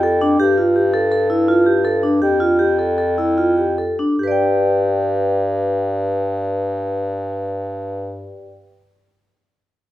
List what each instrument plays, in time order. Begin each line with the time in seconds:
Already playing: bass clarinet F2
0.03 vibraphone A4
0.21 vibraphone D4
0.39 bass clarinet G2, vibraphone G4
0.58 vibraphone F4
0.76 vibraphone G4
0.94 vibraphone A4
1.12 vibraphone A4
1.30 vibraphone E4
1.48 vibraphone F4
1.66 vibraphone G4
1.85 vibraphone A4
2.03 vibraphone D4
2.22 bass clarinet F2, vibraphone G4
2.40 vibraphone F4
2.59 vibraphone G4
2.79 vibraphone A4
2.98 vibraphone A4
3.18 vibraphone E4
3.38 vibraphone F4
3.58 vibraphone G4
3.78 vibraphone A4
3.99 vibraphone D4
4.19 bass clarinet G2, vibraphone G4
4.23 vibraphone B4
4.28 vibraphone D5 G5